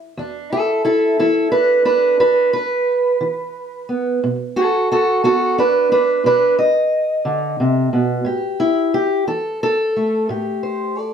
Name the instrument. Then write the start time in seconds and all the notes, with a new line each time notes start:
steel-string acoustic guitar
0.17 E2 D4
0.52 E4 A4
0.85 E4 A4
1.19 E3 E4 A4
1.52 D4 B4
1.85 D4 B4
2.20 E2 D4 B4
2.53 B4
3.21 E3
3.89 B3
4.24 B2
4.56 F#4 A4
4.92 F#4 A4
5.24 B3 F#4 A4
5.58 D4 B4
5.92 D4 B4
6.24 B2 D4 B4
6.59 D#5
7.25 D3
7.60 C3
7.93 B2
8.25 A2 G4
8.60 E4
8.94 G4
9.27 E3 A4
9.63 A4
9.96 A3
10.29 A2 G4
10.63 C5
10.98 A4 D5